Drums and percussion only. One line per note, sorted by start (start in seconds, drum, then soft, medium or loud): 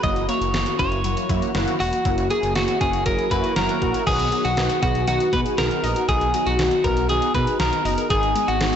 0.03 kick loud
0.03 closed hi-hat medium
0.16 closed hi-hat medium
0.29 closed hi-hat medium
0.42 closed hi-hat soft
0.54 snare loud
0.54 closed hi-hat medium
0.66 closed hi-hat medium
0.79 kick loud
0.79 closed hi-hat medium
0.92 closed hi-hat medium
1.04 closed hi-hat medium
1.17 closed hi-hat soft
1.29 kick medium
1.29 closed hi-hat medium
1.42 closed hi-hat soft
1.55 snare loud
1.55 closed hi-hat medium
1.68 closed hi-hat soft
1.80 open hi-hat medium
1.93 closed hi-hat medium
2.05 kick loud
2.05 closed hi-hat medium
2.18 closed hi-hat medium
2.30 closed hi-hat medium
2.43 closed hi-hat soft
2.55 snare loud
2.55 closed hi-hat medium
2.68 closed hi-hat medium
2.81 kick medium
2.81 closed hi-hat medium
2.93 closed hi-hat medium
3.06 kick medium
3.06 closed hi-hat medium
3.19 closed hi-hat soft
3.31 kick medium
3.31 closed hi-hat medium
3.44 closed hi-hat soft
3.56 snare loud
3.56 closed hi-hat medium
3.69 closed hi-hat medium
3.82 kick medium
3.82 closed hi-hat medium
3.94 closed hi-hat medium
4.07 kick loud
4.07 closed hi-hat medium
4.07 crash loud
4.20 closed hi-hat medium
4.32 closed hi-hat medium
4.45 closed hi-hat soft
4.57 snare loud
4.57 closed hi-hat medium
4.70 closed hi-hat medium
4.83 kick loud
4.83 closed hi-hat medium
4.95 closed hi-hat soft
5.08 closed hi-hat medium
5.20 closed hi-hat soft
5.33 kick medium
5.33 closed hi-hat medium
5.46 closed hi-hat soft
5.58 snare loud
5.58 closed hi-hat medium
5.71 closed hi-hat medium
5.84 open hi-hat medium
5.96 closed hi-hat medium
6.09 kick loud
6.09 closed hi-hat medium
6.21 closed hi-hat medium
6.34 closed hi-hat medium
6.47 closed hi-hat soft
6.59 snare loud
6.59 closed hi-hat medium
6.71 closed hi-hat medium
6.84 kick loud
6.84 closed hi-hat medium
6.97 closed hi-hat medium
7.09 closed hi-hat medium
7.22 closed hi-hat soft
7.35 kick medium
7.35 closed hi-hat medium
7.47 closed hi-hat medium
7.60 snare loud
7.60 closed hi-hat medium
7.73 closed hi-hat medium
7.85 open hi-hat medium
7.98 closed hi-hat medium
8.10 kick loud
8.10 closed hi-hat medium
8.23 closed hi-hat medium
8.36 closed hi-hat medium
8.48 closed hi-hat soft
8.61 snare loud
8.61 closed hi-hat medium